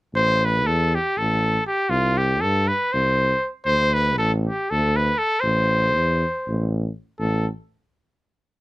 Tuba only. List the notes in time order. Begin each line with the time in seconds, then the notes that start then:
0.14 A1
0.67 E2
1.18 A1
1.90 C2
2.42 G2
2.94 C2
3.66 D2
4.18 A1
4.71 D2
5.43 A1
5.95 E2
6.48 A1
7.20 A1